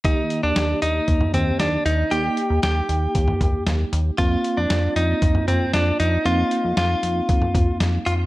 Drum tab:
HH |x-x-x-x-x-x-x-x-|x-x-x-x-x-x-x-x-|x-x-x-x-x-x-x-x-|x-x-x-x-x-x-x-x-|
SD |----o-------o---|----o-------o---|----o-------o---|----o-------o---|
T2 |---------oo-----|---------oo-----|---------oo-----|---------oo-----|
BD |o-------o-------|--------o-o-----|o-------o-------|--------o-o-----|